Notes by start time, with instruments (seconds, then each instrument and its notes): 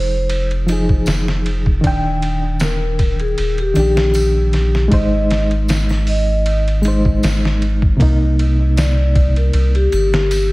Already playing: sub bass F1, reed electric piano F3 D#4 G#4, vibraphone C5
0.29 ride
0.51 ride
0.66 reed electric piano F3 D#4, ride, triangle
0.72 reed electric piano G#4
0.89 kick
1.06 sub bass F1, snare, ride, tambourine
1.28 snare
1.46 ride
1.66 kick
1.81 sub bass D#1, reed electric piano D#3 D4, kick, ride
1.87 reed electric piano G5
2.22 ride
2.60 vibraphone A#4, snare, ride, tambourine
2.99 kick, ride
3.20 vibraphone G#4, ride
3.38 sub bass D#1, ride
3.58 vibraphone G4, ride
3.74 sub bass A#1, reed electric piano D#3 D4, ride, triangle
3.79 reed electric piano G4
3.97 snare
4.14 ride, tambourine, triangle
4.53 snare, ride
4.75 snare
4.88 sub bass G#1, reed electric piano G#3 D#4, kick, ride
4.92 reed electric piano C5, vibraphone D#5
5.30 snare, ride
5.51 ride
5.68 snare, ride, tambourine
5.89 snare, triangle
6.07 vibraphone D#5, open hi-hat
6.46 ride
6.68 ride
6.82 reed electric piano G#3 D#4, ride, triangle
6.88 reed electric piano C5
7.05 kick
7.23 sub bass G#1, snare, ride, tambourine
7.45 snare
7.62 ride
7.82 kick
7.97 sub bass C2, reed electric piano C3 A#3, kick, ride
8.02 reed electric piano D#4
8.39 ride
8.77 vibraphone D5, snare, ride, tambourine
9.15 kick, ride
9.36 vibraphone A#4, ride
9.53 sub bass C2, ride
9.75 vibraphone G4, ride
9.92 sub bass G1, ride, triangle
10.14 snare
10.31 ride, tambourine, triangle